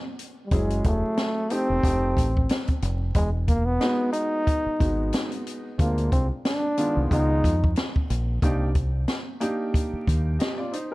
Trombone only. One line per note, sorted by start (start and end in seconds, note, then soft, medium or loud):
0.46 0.55 G3 medium
0.54 0.87 G#3 medium
0.86 1.54 A3 medium
1.53 2.83 C4 loud
3.15 3.30 G#3 medium
3.48 3.67 A#3 medium
3.65 4.12 B3 medium
4.12 5.41 D#4 loud
5.80 6.10 A#3 medium
6.13 6.27 C4 medium
6.46 7.07 D4 loud
7.13 7.74 D#4 loud